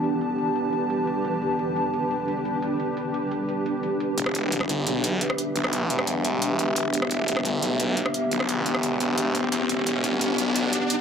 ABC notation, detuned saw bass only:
X:1
M:4/4
L:1/8
Q:1/4=174
K:Em
V:1 name="Detuned saw bass" clef=bass
z8 | z8 | z8 | E,,,3 G,,, B,,,2 z2 |
B,,,2 E,,,2 E,,,4 | E,,,3 G,,, B,,,2 z2 | B,,,2 E,,,2 E,,,3 E,, | E,,,3 G,,, B,,,2 z2 |]